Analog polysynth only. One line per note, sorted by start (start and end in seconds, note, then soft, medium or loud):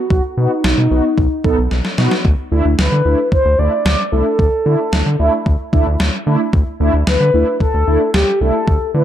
0.37 0.51 B3 medium
0.37 0.51 D#4 medium
0.37 0.51 F#4 medium
0.91 1.05 B3 medium
0.91 1.05 D#4 medium
0.91 1.05 F#4 medium
1.44 1.58 B3 medium
1.44 1.58 D#4 medium
1.44 1.58 A4 loud
1.98 2.12 B3 medium
1.98 2.12 D#4 medium
1.98 2.12 F#4 loud
2.51 2.65 A3 medium
2.51 2.65 D4 medium
2.51 2.65 E4 loud
3.05 3.19 A3 medium
3.05 3.19 D4 medium
3.05 3.19 E4 medium
3.58 3.72 A3 medium
3.58 3.72 D4 medium
3.58 3.72 E4 medium
4.12 4.26 A3 medium
4.12 4.26 D4 medium
4.12 4.26 E4 medium
4.65 4.79 A3 medium
4.65 4.80 D4 medium
4.65 4.80 E4 medium
5.19 5.33 A3 medium
5.19 5.33 D4 medium
5.19 5.33 E4 loud
5.73 5.87 A3 medium
5.73 5.87 D4 medium
5.73 5.87 E4 loud
6.26 6.40 A3 medium
6.26 6.40 D4 medium
6.26 6.40 E4 loud
6.80 6.94 A3 medium
6.80 6.94 D4 medium
6.80 6.94 E4 loud
7.34 7.48 A3 medium
7.34 7.48 D4 medium
7.34 7.48 E4 medium
7.87 8.01 A3 medium
7.87 8.01 D4 medium
7.87 8.01 E4 medium
8.41 8.55 A3 medium
8.41 8.55 D4 medium
8.41 8.55 E4 medium
8.94 9.04 A3 medium
8.94 9.04 D4 medium
8.94 9.04 E4 medium